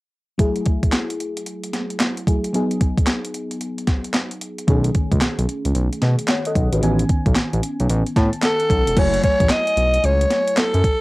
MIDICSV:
0, 0, Header, 1, 5, 480
1, 0, Start_track
1, 0, Tempo, 535714
1, 351, Time_signature, 4, 2, 24, 8
1, 9863, End_track
2, 0, Start_track
2, 0, Title_t, "Alto saxophone"
2, 0, Program_c, 0, 65
2, 7571, Note_on_c, 0, 69, 99
2, 8051, Note_on_c, 0, 73, 103
2, 8064, Note_off_c, 0, 69, 0
2, 8275, Note_off_c, 0, 73, 0
2, 8280, Note_on_c, 0, 73, 104
2, 8523, Note_on_c, 0, 75, 107
2, 8536, Note_off_c, 0, 73, 0
2, 9006, Note_on_c, 0, 73, 106
2, 9019, Note_off_c, 0, 75, 0
2, 9485, Note_on_c, 0, 69, 93
2, 9498, Note_off_c, 0, 73, 0
2, 9863, Note_off_c, 0, 69, 0
2, 9863, End_track
3, 0, Start_track
3, 0, Title_t, "FM electric piano"
3, 0, Program_c, 1, 5
3, 341, Note_on_c, 1, 54, 64
3, 347, Note_on_c, 1, 57, 59
3, 353, Note_on_c, 1, 64, 69
3, 362, Note_on_c, 1, 68, 77
3, 523, Control_c, 1, 64, 127
3, 1993, Note_off_c, 1, 54, 0
3, 1996, Note_off_c, 1, 57, 0
3, 1999, Note_off_c, 1, 64, 0
3, 2003, Note_off_c, 1, 68, 0
3, 2036, Note_on_c, 1, 54, 54
3, 2038, Note_on_c, 1, 57, 54
3, 2040, Note_on_c, 1, 64, 51
3, 2044, Note_on_c, 1, 68, 62
3, 2256, Note_off_c, 1, 54, 0
3, 2267, Note_on_c, 1, 54, 69
3, 2275, Note_off_c, 1, 57, 0
3, 2276, Note_off_c, 1, 64, 0
3, 2276, Note_on_c, 1, 59, 70
3, 2278, Note_off_c, 1, 68, 0
3, 2284, Note_on_c, 1, 63, 68
3, 2285, Control_c, 1, 64, 0
3, 2290, Note_on_c, 1, 68, 81
3, 2420, Control_c, 1, 64, 127
3, 4153, Note_off_c, 1, 54, 0
3, 4158, Note_off_c, 1, 59, 0
3, 4162, Note_off_c, 1, 63, 0
3, 4165, Note_off_c, 1, 68, 0
3, 4187, Note_on_c, 1, 51, 70
3, 4194, Note_on_c, 1, 57, 66
3, 4201, Note_on_c, 1, 61, 68
3, 4202, Control_c, 1, 64, 0
3, 4209, Note_on_c, 1, 68, 79
3, 4379, Control_c, 1, 64, 127
3, 5612, Note_off_c, 1, 68, 0
3, 5638, Note_on_c, 1, 78, 62
3, 5643, Note_on_c, 1, 73, 51
3, 5778, Note_off_c, 1, 78, 0
3, 5781, Note_off_c, 1, 73, 0
3, 5796, Note_on_c, 1, 75, 74
3, 5800, Note_on_c, 1, 69, 58
3, 6017, Note_off_c, 1, 75, 0
3, 6019, Note_off_c, 1, 69, 0
3, 6029, Note_on_c, 1, 71, 63
3, 6034, Note_on_c, 1, 66, 50
3, 6074, Note_off_c, 1, 51, 0
3, 6077, Note_off_c, 1, 57, 0
3, 6081, Note_off_c, 1, 61, 0
3, 6103, Note_on_c, 1, 51, 70
3, 6111, Note_on_c, 1, 59, 62
3, 6117, Note_on_c, 1, 61, 66
3, 6122, Control_c, 1, 64, 0
3, 6125, Note_on_c, 1, 80, 76
3, 6254, Note_off_c, 1, 71, 0
3, 6256, Note_off_c, 1, 66, 0
3, 6303, Control_c, 1, 64, 127
3, 7316, Note_on_c, 1, 81, 71
3, 7537, Note_off_c, 1, 81, 0
3, 7554, Note_on_c, 1, 78, 70
3, 7991, Note_off_c, 1, 51, 0
3, 7995, Note_off_c, 1, 59, 0
3, 7999, Note_off_c, 1, 61, 0
3, 7999, Note_off_c, 1, 78, 0
3, 8003, Note_off_c, 1, 80, 0
3, 8033, Note_on_c, 1, 54, 63
3, 8040, Note_on_c, 1, 57, 63
3, 8043, Control_c, 1, 64, 0
3, 8043, Note_on_c, 1, 64, 59
3, 8054, Note_on_c, 1, 80, 70
3, 8208, Control_c, 1, 64, 127
3, 9863, Note_off_c, 1, 54, 0
3, 9863, Note_off_c, 1, 57, 0
3, 9863, Note_off_c, 1, 64, 0
3, 9863, Note_off_c, 1, 80, 0
3, 9863, End_track
4, 0, Start_track
4, 0, Title_t, "Analog synth bass"
4, 0, Program_c, 2, 38
4, 4195, Note_on_c, 2, 35, 108
4, 4390, Note_off_c, 2, 35, 0
4, 4585, Note_on_c, 2, 37, 93
4, 4657, Note_off_c, 2, 37, 0
4, 4673, Note_on_c, 2, 35, 52
4, 4733, Note_off_c, 2, 35, 0
4, 4821, Note_on_c, 2, 35, 90
4, 4895, Note_off_c, 2, 35, 0
4, 5062, Note_on_c, 2, 37, 81
4, 5135, Note_off_c, 2, 37, 0
4, 5150, Note_on_c, 2, 35, 105
4, 5274, Note_off_c, 2, 35, 0
4, 5394, Note_on_c, 2, 47, 93
4, 5517, Note_off_c, 2, 47, 0
4, 5875, Note_on_c, 2, 35, 79
4, 5997, Note_off_c, 2, 35, 0
4, 6025, Note_on_c, 2, 32, 90
4, 6097, Note_off_c, 2, 32, 0
4, 6115, Note_on_c, 2, 33, 111
4, 6310, Note_off_c, 2, 33, 0
4, 6506, Note_on_c, 2, 35, 83
4, 6578, Note_off_c, 2, 35, 0
4, 6748, Note_on_c, 2, 33, 88
4, 6819, Note_off_c, 2, 33, 0
4, 6988, Note_on_c, 2, 35, 89
4, 7059, Note_off_c, 2, 35, 0
4, 7075, Note_on_c, 2, 33, 107
4, 7197, Note_off_c, 2, 33, 0
4, 7316, Note_on_c, 2, 45, 97
4, 7438, Note_off_c, 2, 45, 0
4, 7796, Note_on_c, 2, 35, 88
4, 7917, Note_off_c, 2, 35, 0
4, 7945, Note_on_c, 2, 28, 88
4, 8017, Note_off_c, 2, 28, 0
4, 8037, Note_on_c, 2, 30, 100
4, 8231, Note_off_c, 2, 30, 0
4, 8427, Note_on_c, 2, 33, 90
4, 8498, Note_off_c, 2, 33, 0
4, 8751, Note_on_c, 2, 35, 89
4, 8948, Note_off_c, 2, 35, 0
4, 8993, Note_on_c, 2, 37, 107
4, 9189, Note_off_c, 2, 37, 0
4, 9625, Note_on_c, 2, 42, 100
4, 9697, Note_off_c, 2, 42, 0
4, 9863, End_track
5, 0, Start_track
5, 0, Title_t, "Drums"
5, 351, Note_on_c, 9, 36, 104
5, 352, Note_on_c, 9, 42, 71
5, 441, Note_off_c, 9, 36, 0
5, 441, Note_off_c, 9, 42, 0
5, 499, Note_on_c, 9, 42, 49
5, 588, Note_off_c, 9, 42, 0
5, 588, Note_on_c, 9, 42, 65
5, 594, Note_on_c, 9, 36, 74
5, 677, Note_off_c, 9, 42, 0
5, 683, Note_off_c, 9, 36, 0
5, 744, Note_on_c, 9, 36, 80
5, 745, Note_on_c, 9, 42, 52
5, 825, Note_on_c, 9, 39, 79
5, 831, Note_on_c, 9, 38, 106
5, 833, Note_off_c, 9, 36, 0
5, 834, Note_off_c, 9, 42, 0
5, 835, Note_on_c, 9, 42, 63
5, 915, Note_off_c, 9, 39, 0
5, 921, Note_off_c, 9, 38, 0
5, 925, Note_off_c, 9, 42, 0
5, 987, Note_on_c, 9, 42, 48
5, 1077, Note_off_c, 9, 42, 0
5, 1077, Note_on_c, 9, 42, 61
5, 1167, Note_off_c, 9, 42, 0
5, 1227, Note_on_c, 9, 42, 53
5, 1311, Note_off_c, 9, 42, 0
5, 1311, Note_on_c, 9, 42, 68
5, 1401, Note_off_c, 9, 42, 0
5, 1466, Note_on_c, 9, 42, 45
5, 1554, Note_on_c, 9, 38, 61
5, 1555, Note_off_c, 9, 42, 0
5, 1555, Note_on_c, 9, 42, 60
5, 1644, Note_off_c, 9, 38, 0
5, 1645, Note_off_c, 9, 42, 0
5, 1705, Note_on_c, 9, 42, 47
5, 1790, Note_on_c, 9, 39, 86
5, 1794, Note_off_c, 9, 42, 0
5, 1794, Note_on_c, 9, 42, 66
5, 1796, Note_on_c, 9, 38, 113
5, 1879, Note_off_c, 9, 39, 0
5, 1883, Note_off_c, 9, 42, 0
5, 1885, Note_off_c, 9, 38, 0
5, 1947, Note_on_c, 9, 42, 51
5, 2036, Note_on_c, 9, 36, 77
5, 2037, Note_off_c, 9, 42, 0
5, 2042, Note_on_c, 9, 42, 66
5, 2125, Note_off_c, 9, 36, 0
5, 2132, Note_off_c, 9, 42, 0
5, 2189, Note_on_c, 9, 42, 57
5, 2279, Note_off_c, 9, 42, 0
5, 2280, Note_on_c, 9, 42, 74
5, 2369, Note_off_c, 9, 42, 0
5, 2429, Note_on_c, 9, 42, 51
5, 2516, Note_off_c, 9, 42, 0
5, 2516, Note_on_c, 9, 42, 71
5, 2517, Note_on_c, 9, 36, 74
5, 2606, Note_off_c, 9, 36, 0
5, 2606, Note_off_c, 9, 42, 0
5, 2666, Note_on_c, 9, 36, 77
5, 2671, Note_on_c, 9, 42, 54
5, 2747, Note_on_c, 9, 39, 87
5, 2753, Note_on_c, 9, 38, 102
5, 2756, Note_off_c, 9, 36, 0
5, 2757, Note_off_c, 9, 42, 0
5, 2757, Note_on_c, 9, 42, 59
5, 2836, Note_off_c, 9, 39, 0
5, 2842, Note_off_c, 9, 38, 0
5, 2846, Note_off_c, 9, 42, 0
5, 2909, Note_on_c, 9, 42, 51
5, 2995, Note_off_c, 9, 42, 0
5, 2995, Note_on_c, 9, 42, 66
5, 3084, Note_off_c, 9, 42, 0
5, 3145, Note_on_c, 9, 42, 51
5, 3233, Note_off_c, 9, 42, 0
5, 3233, Note_on_c, 9, 42, 68
5, 3322, Note_off_c, 9, 42, 0
5, 3388, Note_on_c, 9, 42, 43
5, 3469, Note_on_c, 9, 38, 66
5, 3470, Note_off_c, 9, 42, 0
5, 3470, Note_on_c, 9, 42, 57
5, 3471, Note_on_c, 9, 36, 74
5, 3559, Note_off_c, 9, 38, 0
5, 3560, Note_off_c, 9, 42, 0
5, 3561, Note_off_c, 9, 36, 0
5, 3622, Note_on_c, 9, 42, 49
5, 3705, Note_on_c, 9, 39, 85
5, 3709, Note_off_c, 9, 42, 0
5, 3709, Note_on_c, 9, 42, 63
5, 3711, Note_on_c, 9, 38, 107
5, 3795, Note_off_c, 9, 39, 0
5, 3799, Note_off_c, 9, 42, 0
5, 3801, Note_off_c, 9, 38, 0
5, 3862, Note_on_c, 9, 42, 52
5, 3951, Note_off_c, 9, 42, 0
5, 3953, Note_on_c, 9, 42, 63
5, 4043, Note_off_c, 9, 42, 0
5, 4107, Note_on_c, 9, 42, 62
5, 4192, Note_off_c, 9, 42, 0
5, 4192, Note_on_c, 9, 36, 105
5, 4192, Note_on_c, 9, 42, 76
5, 4282, Note_off_c, 9, 36, 0
5, 4282, Note_off_c, 9, 42, 0
5, 4340, Note_on_c, 9, 42, 51
5, 4429, Note_off_c, 9, 42, 0
5, 4432, Note_on_c, 9, 42, 63
5, 4434, Note_on_c, 9, 36, 79
5, 4521, Note_off_c, 9, 42, 0
5, 4524, Note_off_c, 9, 36, 0
5, 4584, Note_on_c, 9, 36, 79
5, 4586, Note_on_c, 9, 42, 54
5, 4666, Note_on_c, 9, 39, 88
5, 4672, Note_on_c, 9, 38, 106
5, 4673, Note_off_c, 9, 36, 0
5, 4676, Note_off_c, 9, 42, 0
5, 4676, Note_on_c, 9, 42, 65
5, 4756, Note_off_c, 9, 39, 0
5, 4762, Note_off_c, 9, 38, 0
5, 4766, Note_off_c, 9, 42, 0
5, 4826, Note_on_c, 9, 42, 51
5, 4916, Note_off_c, 9, 42, 0
5, 4917, Note_on_c, 9, 42, 67
5, 5007, Note_off_c, 9, 42, 0
5, 5062, Note_on_c, 9, 42, 48
5, 5151, Note_off_c, 9, 42, 0
5, 5151, Note_on_c, 9, 42, 69
5, 5240, Note_off_c, 9, 42, 0
5, 5309, Note_on_c, 9, 42, 47
5, 5391, Note_on_c, 9, 38, 66
5, 5392, Note_off_c, 9, 42, 0
5, 5392, Note_on_c, 9, 42, 59
5, 5481, Note_off_c, 9, 38, 0
5, 5482, Note_off_c, 9, 42, 0
5, 5543, Note_on_c, 9, 42, 48
5, 5624, Note_on_c, 9, 39, 86
5, 5628, Note_off_c, 9, 42, 0
5, 5628, Note_on_c, 9, 42, 66
5, 5630, Note_on_c, 9, 38, 108
5, 5714, Note_off_c, 9, 39, 0
5, 5718, Note_off_c, 9, 42, 0
5, 5720, Note_off_c, 9, 38, 0
5, 5782, Note_on_c, 9, 42, 47
5, 5872, Note_off_c, 9, 42, 0
5, 5873, Note_on_c, 9, 36, 77
5, 5877, Note_on_c, 9, 42, 69
5, 5963, Note_off_c, 9, 36, 0
5, 5966, Note_off_c, 9, 42, 0
5, 6027, Note_on_c, 9, 42, 65
5, 6117, Note_off_c, 9, 42, 0
5, 6119, Note_on_c, 9, 42, 78
5, 6208, Note_off_c, 9, 42, 0
5, 6266, Note_on_c, 9, 42, 51
5, 6356, Note_off_c, 9, 42, 0
5, 6356, Note_on_c, 9, 42, 69
5, 6357, Note_on_c, 9, 36, 69
5, 6445, Note_off_c, 9, 42, 0
5, 6446, Note_off_c, 9, 36, 0
5, 6505, Note_on_c, 9, 36, 80
5, 6507, Note_on_c, 9, 42, 52
5, 6588, Note_on_c, 9, 39, 82
5, 6594, Note_on_c, 9, 38, 104
5, 6595, Note_off_c, 9, 36, 0
5, 6596, Note_off_c, 9, 42, 0
5, 6598, Note_on_c, 9, 42, 58
5, 6678, Note_off_c, 9, 39, 0
5, 6684, Note_off_c, 9, 38, 0
5, 6688, Note_off_c, 9, 42, 0
5, 6750, Note_on_c, 9, 42, 49
5, 6839, Note_off_c, 9, 42, 0
5, 6839, Note_on_c, 9, 42, 71
5, 6928, Note_off_c, 9, 42, 0
5, 6988, Note_on_c, 9, 42, 48
5, 7075, Note_off_c, 9, 42, 0
5, 7075, Note_on_c, 9, 42, 71
5, 7165, Note_off_c, 9, 42, 0
5, 7227, Note_on_c, 9, 42, 45
5, 7314, Note_on_c, 9, 36, 86
5, 7316, Note_on_c, 9, 38, 65
5, 7317, Note_off_c, 9, 42, 0
5, 7317, Note_on_c, 9, 42, 64
5, 7404, Note_off_c, 9, 36, 0
5, 7405, Note_off_c, 9, 38, 0
5, 7406, Note_off_c, 9, 42, 0
5, 7464, Note_on_c, 9, 42, 51
5, 7547, Note_on_c, 9, 39, 93
5, 7551, Note_off_c, 9, 42, 0
5, 7551, Note_on_c, 9, 42, 67
5, 7553, Note_on_c, 9, 38, 104
5, 7636, Note_off_c, 9, 39, 0
5, 7641, Note_off_c, 9, 42, 0
5, 7643, Note_off_c, 9, 38, 0
5, 7703, Note_on_c, 9, 42, 46
5, 7793, Note_off_c, 9, 42, 0
5, 7794, Note_on_c, 9, 36, 80
5, 7800, Note_on_c, 9, 42, 67
5, 7884, Note_off_c, 9, 36, 0
5, 7889, Note_off_c, 9, 42, 0
5, 7950, Note_on_c, 9, 42, 66
5, 8034, Note_on_c, 9, 36, 108
5, 8034, Note_on_c, 9, 49, 86
5, 8035, Note_off_c, 9, 42, 0
5, 8035, Note_on_c, 9, 42, 75
5, 8124, Note_off_c, 9, 36, 0
5, 8124, Note_off_c, 9, 42, 0
5, 8124, Note_off_c, 9, 49, 0
5, 8186, Note_on_c, 9, 42, 50
5, 8275, Note_off_c, 9, 42, 0
5, 8275, Note_on_c, 9, 42, 70
5, 8276, Note_on_c, 9, 36, 78
5, 8364, Note_off_c, 9, 42, 0
5, 8366, Note_off_c, 9, 36, 0
5, 8425, Note_on_c, 9, 36, 80
5, 8425, Note_on_c, 9, 42, 54
5, 8505, Note_on_c, 9, 39, 88
5, 8511, Note_on_c, 9, 38, 101
5, 8514, Note_off_c, 9, 36, 0
5, 8514, Note_off_c, 9, 42, 0
5, 8515, Note_on_c, 9, 42, 69
5, 8594, Note_off_c, 9, 39, 0
5, 8600, Note_off_c, 9, 38, 0
5, 8604, Note_off_c, 9, 42, 0
5, 8666, Note_on_c, 9, 42, 51
5, 8755, Note_off_c, 9, 42, 0
5, 8755, Note_on_c, 9, 42, 68
5, 8845, Note_off_c, 9, 42, 0
5, 8904, Note_on_c, 9, 42, 53
5, 8994, Note_off_c, 9, 42, 0
5, 8994, Note_on_c, 9, 42, 72
5, 9084, Note_off_c, 9, 42, 0
5, 9149, Note_on_c, 9, 42, 45
5, 9233, Note_on_c, 9, 38, 66
5, 9234, Note_off_c, 9, 42, 0
5, 9234, Note_on_c, 9, 42, 63
5, 9323, Note_off_c, 9, 38, 0
5, 9324, Note_off_c, 9, 42, 0
5, 9386, Note_on_c, 9, 42, 49
5, 9469, Note_on_c, 9, 39, 94
5, 9473, Note_off_c, 9, 42, 0
5, 9473, Note_on_c, 9, 42, 67
5, 9475, Note_on_c, 9, 38, 108
5, 9559, Note_off_c, 9, 39, 0
5, 9563, Note_off_c, 9, 42, 0
5, 9565, Note_off_c, 9, 38, 0
5, 9624, Note_on_c, 9, 42, 51
5, 9713, Note_off_c, 9, 42, 0
5, 9713, Note_on_c, 9, 36, 82
5, 9716, Note_on_c, 9, 42, 68
5, 9802, Note_off_c, 9, 36, 0
5, 9805, Note_off_c, 9, 42, 0
5, 9863, End_track
0, 0, End_of_file